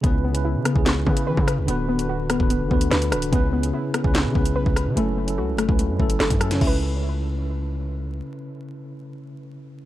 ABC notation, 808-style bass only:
X:1
M:4/4
L:1/16
Q:1/4=146
K:C#phr
V:1 name="808-style bass" clef=bass
C,,4- C,, C,2 C,,3 C,2 E, C,2 B,,, | D,,,6- D,,, C,,,2 F,,, D,,2 D,,2 C,,,2 | C,,4 z3 C,,2 C, C,,2 B,,, C,,2 C, | F,,,4 C,,3/2 F,,,3/2 C,,2 F,, F,,,2 F,,, F,,3 |
C,,16 | z16 |]